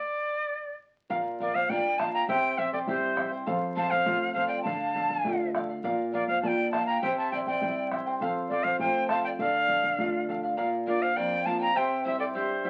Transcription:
Already playing: quena D5
1.10 nylon-string guitar A#2, charango A#4 D5 F5, bombo low
1.40 charango A#4 D5 F5, pan flute A#4, quena D5, bombo low
1.54 pan flute C5, charango D5 F5, quena F5, bombo low
1.68 nylon-string guitar A#3 D4 F4, charango A#4 D5 F5, pan flute D5, quena G5, bombo low
1.99 charango A#4 D5 F5, pan flute F5, quena A5, bombo rim, bombo low
2.13 charango D5 F5, pan flute G5, quena A#5
2.28 nylon-string guitar C3, charango E4 G4 C5 E5 G5, pan flute C5, quena G5, bombo low
2.58 charango E4 C5 E5 G5, pan flute C5, quena E5, bombo low
2.73 charango E4 C5 G5, pan flute A4, quena D5, bombo low
2.87 nylon-string guitar G3 C4 E4, charango E4 C5 E5 G5, pan flute G4, quena C5, bombo low
3.16 charango E4 C5 E5 G5, bombo rim, bombo low
3.31 charango E4 C5 G5
3.46 nylon-string guitar F2, charango A4 C5 F5, bombo low
3.76 charango A4 C5 F5, pan flute F5, quena A5, bombo low
3.90 pan flute C5, charango C5 F5, quena F5, bombo low
4.06 nylon-string guitar A3 C4 F4, charango A4 C5 F5, bombo low
4.33 charango A4 C5 F5, pan flute C5, quena F5, bombo low
4.47 pan flute D5, charango F5, quena G5
4.51 charango C5
4.63 nylon-string guitar D3, charango A4 D5 F5, pan flute F5, quena A5, bombo low
4.95 charango A4 D5 F5, bombo low
5.10 charango D5 F5, bombo low
5.24 nylon-string guitar A3 D4 F4, charango A4 D5 F5, bombo low
5.54 charango A4 D5 F5, bombo rim, bombo low
5.69 charango D5 F5
5.84 nylon-string guitar A#2, charango A#4 D5 F5, bombo low
6.12 pan flute A#4, charango A#4 D5 F5, quena D5, bombo low
6.27 pan flute C5, charango D5 F5, quena F5, bombo low
6.42 nylon-string guitar A#3 D4 F4, charango A#4 D5 F5, pan flute D5, quena A5, bombo low
6.47 quena G5
6.71 charango A#4 D5 F5, pan flute F5, quena A5, bombo rim, bombo low
6.86 charango D5 F5, pan flute G5, quena A#5
7.02 nylon-string guitar C3, charango E4 G4 C5 E5 G5, pan flute C5, quena G5, bombo low
7.17 pan flute E5, quena A5
7.32 charango E4 C5 E5 G5, pan flute D5, quena G5, bombo low
7.47 charango E4 C5 G5, pan flute D5, quena G5, bombo low
7.61 nylon-string guitar G3 C4 E4, charango E4 C5 E5 G5, bombo low
7.91 charango E4 C5 E5 G5, bombo rim, bombo low
8.06 charango E4 C5 G5
8.20 nylon-string guitar F2, charango A4 C5 F5, bombo low
8.49 charango A4 C5 F5, pan flute A4, quena D5, bombo low
8.63 pan flute C5, quena F5, charango F5, bombo low
8.68 charango C5
8.79 nylon-string guitar A3 C4 F4, charango A4 C5 F5, pan flute C5, quena G5, bombo low
9.08 charango A4 C5 F5, pan flute F5, quena A5, bombo rim, bombo low
9.24 charango C5 F5, pan flute D5, quena G5
9.39 nylon-string guitar D3, charango A4 D5 F5, pan flute D5, quena F5, bombo low
9.68 charango A4 D5 F5, bombo low
9.83 charango D5 F5, bombo low
9.98 nylon-string guitar A3 D4 F4, charango A4 D5 F5, bombo low
10.28 charango A4 D5 F5, bombo low
10.43 charango D5 F5
10.57 nylon-string guitar A#2, charango A#4 D5 F5
10.87 nylon-string guitar A#3 D4 F4, pan flute A#4, charango A#4 D5 F5, quena D5
11.01 pan flute C5, charango D5 F5, quena F5
11.15 nylon-string guitar F2, charango A#4 D5 F5, pan flute D5, quena G5
11.44 nylon-string guitar A#3 D4 F4, charango A#4 D5 F5, pan flute F5, quena A5
11.59 charango D5 F5, pan flute G5, quena A#5
11.74 nylon-string guitar C3, charango E4 G4 C5 E5 G5, pan flute C5, quena G5
12.04 nylon-string guitar G3 C4 E4, charango E4 C5 E5 G5, pan flute C5, quena E5
12.19 charango E4 C5 G5, pan flute A4, quena D5
12.34 nylon-string guitar G2, charango E4 C5 E5 G5, pan flute G4, quena C5
12.64 nylon-string guitar G3 C4 E4, charango E4 C5 E5 G5

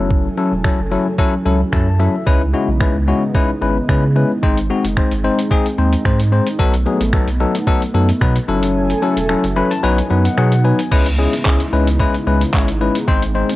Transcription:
Already playing: sub bass F#1, tine electric piano F#3 C#4 E4 A4, analog synth pad F#3 C#4 E4 A4 G#5
0.11 kick
0.37 tine electric piano F#3 C#4 E4 A4
0.52 sub bass E1
0.64 tine electric piano F#3 C#4 E4 A4, finger snap, kick
0.79 sub bass F#1
0.91 tine electric piano F#3 C#4 E4 A4
1.18 tine electric piano F#3 C#4 E4 A4, kick
1.45 sub bass C#2, tine electric piano F#3 C#4 E4 A4
1.72 sub bass F#2, tine electric piano F#3 C#4 E4 A4 A5, finger snap, kick
1.99 tine electric piano F#3 C#4 E4 A4 E5
2.27 sub bass C#2, analog synth pad C#3 G#3 B3 D#4, tine electric piano G#3 C#4 E4 B4, kick
2.54 tine electric piano G#3 C#4 E4 F#4
2.68 sub bass B1
2.81 tine electric piano G#3 C#4 E4 B4, finger snap, kick
2.95 sub bass C#2
3.08 tine electric piano G#3 C#4 E4 F#4
3.35 tine electric piano G#3 C#4 E4 B4, kick
3.62 sub bass G#1, tine electric piano G#3 C#4 E4 B4
3.89 sub bass C#3, tine electric piano G#3 C#4 E4 B4, finger snap, kick
4.16 tine electric piano G#3 C#4 E4 B4
4.43 sub bass G#1, tine electric piano G#3 C4 D#4 C5, analog synth pad G#3 C4, kick
4.57 closed hi-hat
4.70 tine electric piano G#3 C4 D#4 F#4
4.84 sub bass F#1, closed hi-hat
4.97 tine electric piano G#3 C4 D#4 C5, finger snap, kick
5.11 sub bass G#1, closed hi-hat
5.24 tine electric piano G#3 C4 D#4 C5
5.39 closed hi-hat
5.51 tine electric piano G#3 C4 D#4 G#4, kick
5.66 closed hi-hat
5.78 sub bass D#2, tine electric piano G#3 C4 D#4 C5
5.93 closed hi-hat
6.05 sub bass G#2, tine electric piano G#3 C4 D#4 C5, finger snap, kick
6.20 closed hi-hat
6.32 tine electric piano G#3 C4 D#4 C5
6.47 closed hi-hat
6.59 sub bass B1, tine electric piano F#3 B3 D#4 A4, analog synth pad A3 B3, kick
6.74 closed hi-hat
6.86 tine electric piano F#3 B3 D#4 G#4
7.00 sub bass A1, closed hi-hat
7.13 tine electric piano F#3 B3 D#4 A4, finger snap, kick
7.28 sub bass B1, closed hi-hat
7.40 tine electric piano F#3 B3 D#4 A4
7.55 closed hi-hat
7.67 tine electric piano F#3 B3 D#4 A4, kick
7.82 closed hi-hat
7.94 sub bass F#2, tine electric piano F#3 B3 D#4 A4
8.09 closed hi-hat
8.21 sub bass B2, tine electric piano F#3 B3 D#4 B4, finger snap, kick
8.36 closed hi-hat
8.48 sub bass F#1, tine electric piano F#3 C#4 E4 A4, analog synth pad F#3 C#4 E4 A4 G#5
8.63 closed hi-hat
8.90 closed hi-hat
9.02 tine electric piano F#3 C#4 E4 A4
9.17 sub bass E1, closed hi-hat
9.29 tine electric piano F#3 C#4 E4 A4, finger snap
9.44 sub bass F#1, closed hi-hat
9.56 tine electric piano F#3 C#4 E4 B4 B5
9.71 tine electric piano A5, closed hi-hat
9.83 sub bass B1, tine electric piano F#3 B3 D#4 B4 G#5, analog synth pad B3 D#4
9.98 closed hi-hat
10.10 sub bass F#2, tine electric piano F#3 B3 D#4 B4
10.25 tine electric piano F#5, closed hi-hat
10.37 sub bass B2, tine electric piano F#3 B3 D#4 G#4 F#5, finger snap
10.52 closed hi-hat
10.64 tine electric piano F#3 B3 D#4 B4 G#5
10.79 closed hi-hat
10.91 sub bass C#2, analog synth pad C#3 G#3 B3 D#4 E4, tine electric piano G#3 C#4 E4 B4, kick, crash
11.06 closed hi-hat
11.18 tine electric piano G#3 C#4 E4 G#4
11.33 closed hi-hat
11.45 sub bass C#2, tine electric piano G#3 C#4 E4 G#4, kick, clap
11.60 closed hi-hat
11.73 sub bass C#2, tine electric piano G#3 C#4 E4 B4
11.87 closed hi-hat
12.00 tine electric piano G#3 C#4 E4 B4, kick
12.14 closed hi-hat
12.27 sub bass C#2, tine electric piano G#3 C#4 E4 B4
12.41 closed hi-hat
12.54 sub bass G#1, tine electric piano G#3 C#4 E4 C#5, kick, clap
12.68 closed hi-hat
12.81 tine electric piano G#3 C#4 E4 B4
12.95 closed hi-hat
13.08 sub bass G#1, tine electric piano G#3 C4 D#4 C5, analog synth pad C4, kick
13.22 closed hi-hat
13.35 tine electric piano G#3 C4 D#4 C5
13.49 closed hi-hat

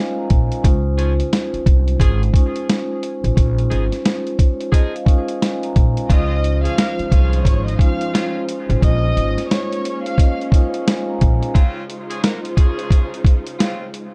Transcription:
Already playing: vibraphone G#3 C#4 D#4 F4 A#4 C5 C#5 D#5 F5 F#5 G#5
0.18 vibraphone A#5
0.29 upright bass A#1, vibraphone G#5, kick, closed hi-hat
0.52 closed hi-hat
0.61 upright bass C#2, vibraphone G#3 C#4 D#4 F4, kick, closed hi-hat
0.66 vibraphone C5
0.98 saxophone section F3 C#4 G#4, closed hi-hat
1.20 closed hi-hat
1.33 snare, closed hi-hat
1.54 muted upright bass stroke, closed hi-hat
1.66 upright bass C2, kick, closed hi-hat
1.88 closed hi-hat
2.00 upright bass G#1, saxophone section F3 C#4 G#4, kick, closed hi-hat
2.23 closed hi-hat
2.33 vibraphone G#3 C#4 D#4 F4, kick, closed hi-hat
2.38 vibraphone C5
2.56 closed hi-hat
2.69 snare, closed hi-hat
3.03 closed hi-hat
3.24 upright bass A1, closed hi-hat
3.34 upright bass A#1, vibraphone G#3 C#4 D#4 F4, kick, closed hi-hat
3.39 vibraphone C5
3.58 closed hi-hat
3.71 upright bass G#1, saxophone section F3 D#4 G#4, closed hi-hat
3.92 snare, closed hi-hat
4.05 snare, closed hi-hat
4.27 closed hi-hat
4.37 vibraphone C#5, kick, closed hi-hat
4.61 closed hi-hat
4.72 saxophone section F3 D#4 G#4, vibraphone D#5, kick, closed hi-hat
4.94 vibraphone F5, closed hi-hat
5.05 vibraphone G#3 C#4 D#4 F4, kick, closed hi-hat
5.10 vibraphone A#4
5.17 vibraphone C5
5.28 vibraphone F#5, closed hi-hat
5.41 vibraphone G#5, snare, closed hi-hat
5.63 vibraphone A#5, closed hi-hat
5.76 upright bass A#1, kick, closed hi-hat
5.97 closed hi-hat
6.07 upright bass C#2, saxophone section C#3 C4 F4, string section F3 G#3 D#4 F4 C5, vibraphone G#3 C#4 D#4 F4, violin section D#5, kick, closed hi-hat
6.11 vibraphone C5, violin section D#6
6.44 closed hi-hat
6.64 saxophone section F3 C#4 G#4, violin section F5 F6, closed hi-hat
6.78 saxophone section A#3 F#4 A#4, snare, closed hi-hat
6.99 muted upright bass stroke, closed hi-hat
7.11 upright bass C2, saxophone section F3 C#4 G#4, violin section F5 F6, kick, closed hi-hat
7.33 closed hi-hat
7.44 upright bass G#1, violin section C#5 C#6, kick, closed hi-hat
7.66 violin section D#5 D#6, closed hi-hat
7.79 vibraphone G#3 C#4 D#4 F4, violin section F5 F6, kick, closed hi-hat
7.84 vibraphone C5
8.01 closed hi-hat
8.14 saxophone section C#3 C4 F4, snare, closed hi-hat
8.49 closed hi-hat
8.70 upright bass A1, closed hi-hat
8.80 upright bass A#1, vibraphone G#3 C#4 D#4 F4, string section A#3 C#4, violin section D#5, kick, closed hi-hat
8.84 vibraphone C5, violin section D#6
9.17 upright bass G#1, closed hi-hat
9.38 snare, closed hi-hat
9.48 violin section C#5 C#6, snare, closed hi-hat
9.72 closed hi-hat
9.82 vibraphone C#5, closed hi-hat
10.04 violin section F5 F6, closed hi-hat
10.18 vibraphone D#5, kick, closed hi-hat
10.39 vibraphone F5, closed hi-hat
10.51 vibraphone G#3 C#4 D#4 F4, kick, closed hi-hat
10.55 vibraphone A#4
10.62 vibraphone C5
10.73 vibraphone F#5, closed hi-hat
10.87 vibraphone G#5, snare, closed hi-hat
11.09 vibraphone A#5
11.20 upright bass A#1, vibraphone G#5, kick, closed hi-hat
11.43 closed hi-hat
11.54 string section C#3 D#4 F4 C5, saxophone section C#3 C4 F4, kick, closed hi-hat
11.90 closed hi-hat
12.10 saxophone section F3 C#4 G#4, closed hi-hat
12.24 saxophone section A#3 F#4 A#4, snare, closed hi-hat
12.45 closed hi-hat
12.57 saxophone section F3 C#4 G#4, kick, closed hi-hat
12.79 closed hi-hat
12.90 kick, closed hi-hat
13.14 closed hi-hat
13.24 kick, closed hi-hat
13.47 closed hi-hat
13.59 saxophone section C#3 C4 F4, snare, closed hi-hat
13.94 closed hi-hat

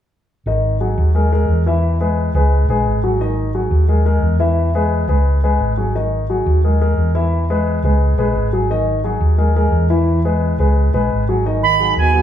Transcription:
0.46 fingered electric bass G#1, grand piano D#3 D#4 D#5
0.81 grand piano F#3 F#4 G#4
0.98 fingered electric bass D#2
1.15 grand piano G#3 G#4 A#4
1.32 grand piano G#3 G#4 A#4
1.48 fingered electric bass E2
1.66 grand piano E3 E4 E5
2.00 grand piano G#3 G#4 B4
2.35 fingered electric bass C#2, grand piano G#3 G#4 B4
2.68 fingered electric bass A#1, grand piano G#3 G#4 B4
2.85 fingered electric bass G#1
3.04 grand piano F#3 F#4 G#4
3.21 grand piano D#3 D#4 D#5
3.55 grand piano F#3 F#4 G#4
3.71 fingered electric bass D#2
3.88 grand piano G#3 G#4 A#4
4.05 grand piano G#3 G#4 A#4
4.22 fingered electric bass E2
4.40 grand piano E3 E4 E5
4.75 grand piano G#3 G#4 B4
5.08 fingered electric bass C#2, grand piano G#3 G#4 B4
5.44 grand piano G#3 G#4 B4
5.60 fingered electric bass G#1
5.77 grand piano F#3 F#4 G#4
5.95 grand piano D#3 D#4 D#5
6.29 grand piano F#3 F#4 G#4
6.46 fingered electric bass D#2
6.64 grand piano G#3 G#4 A#4
6.81 grand piano G#3 G#4 A#4
6.97 fingered electric bass E2
7.15 grand piano E3 E4 E5
7.50 grand piano G#3 G#4 B4
7.83 fingered electric bass C#2, grand piano G#3 G#4 B4
8.18 fingered electric bass A#1, grand piano G#3 G#4 B4
8.35 fingered electric bass G#1
8.53 grand piano F#3 F#4 G#4
8.70 grand piano D#3 D#4 D#5
9.04 grand piano F#3 F#4 G#4
9.20 fingered electric bass D#2
9.38 grand piano G#3 G#4 A#4
9.56 grand piano G#3 G#4 A#4
9.72 fingered electric bass E2
9.90 grand piano E3 E4 E5
10.25 grand piano G#3 G#4 B4
10.59 fingered electric bass C#2, grand piano G#3 G#4 B4
10.94 fingered electric bass A#1, grand piano G#3 G#4 B4
11.10 fingered electric bass G#1
11.29 grand piano F#3 F#4 G#4
11.46 grand piano D#3 D#4 D#5
11.63 trombone D#3, flute B5
11.80 grand piano F#3 F#4 G#4
11.97 fingered electric bass D#2, trombone B2, flute G#5
12.15 grand piano F#3 F#4 G#4

